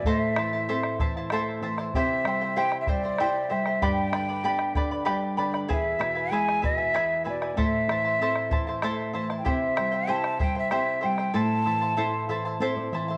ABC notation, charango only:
X:1
M:3/4
L:1/16
Q:1/4=96
K:Am
V:1 name="Charango"
[EAcea]2 [Ecea] [Eca] [EAcea]2 [Ecea] [Eca] [EAcea]2 [Ecea] [Eca] | [EGceg]2 [Eceg] [Ecg] [EGceg]2 [Eceg] [Ecg] [EGceg]2 [Eceg] [Ecg] | [GBdgb]2 [Bdgb] [Bdb] [GBdgb]2 [Bdgb] [Bdb] [GBdgb]2 [Bdgb] [Bdb] | [E^GBe^g]2 [EBeg] [EBg] [EGBeg]2 [EBeg] [EBg] [EGBeg]2 [EBeg] [EBg] |
[EAcea]2 [Ecea] [Eca] [EAcea]2 [Ecea] [Eca] [EAcea]2 [Ecea] [Eca] | [EGceg]2 [Eceg] [Ecg] [EGceg]2 [Eceg] [Ecg] [EGceg]2 [Eceg] [Ecg] | [EAcea]2 [Ecea] [Eca] [EAcea]2 [Ecea] [Eca] [EAcea]2 [Ecea] [Eca] |]